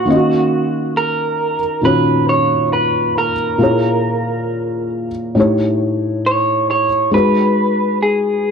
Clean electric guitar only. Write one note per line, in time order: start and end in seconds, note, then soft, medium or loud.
0.00 0.97 F#4 medium
0.97 1.80 A#4 medium
1.85 2.29 B4 medium
2.29 2.73 C#5 medium
2.73 3.18 B4 medium
3.18 4.89 A#4 medium
6.26 6.69 C#5 loud
6.71 7.14 C#5 medium
7.14 7.98 B4 loud
8.03 8.51 G#4 medium